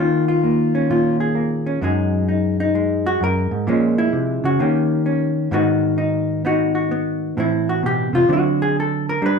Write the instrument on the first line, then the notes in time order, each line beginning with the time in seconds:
hollow-body jazz guitar
Already playing: A#3
0.00 D#3 F4
0.28 F4
0.43 A#3
0.75 C#4
0.90 A#2 F4
1.20 G#4
1.35 A#3
1.66 C#4
1.81 F#2 F#3 G#3 D#4 G#4
2.29 D#4
2.60 D#4
2.75 G#3
3.06 F#4
3.20 F#2 A#4
3.51 G#2
3.67 A#2 F3 G#3 C#4
3.98 E4
4.13 C3
4.44 C#3 F#4
4.59 D#3 A#3 C#4 G4
5.06 C#4
5.51 G#2 D#3 B3 D#4 F#4
5.98 D#4
6.45 B3 D#4 F#4
6.75 F#4
6.91 B3
7.37 A2 E3 C4 E4
7.69 F#4
7.83 B2 G4
8.13 C3 F4
8.29 D3 F#3 C4
8.33 F#4
8.62 G#4
8.80 A4
9.09 A#4
9.22 G3 D4
9.26 B4